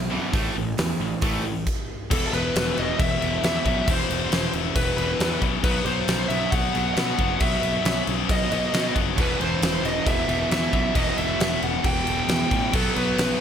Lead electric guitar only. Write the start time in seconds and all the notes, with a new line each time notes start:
2.12 A4
2.27 A4
2.34 B4
2.79 D#5
2.99 E5
3.45 E5
3.91 C5
4.76 B4
4.98 B4
5.64 B4
5.86 C5
6.28 E5
6.51 F#5
6.94 F#5
7.40 E5
8.31 D#5
8.52 D#5
9.21 B4
9.41 C5
9.85 D#5
10.08 E5
10.52 E5
10.96 D#5
11.18 E5
11.64 F#5
11.86 G5
12.31 G5
12.76 A4
12.97 B4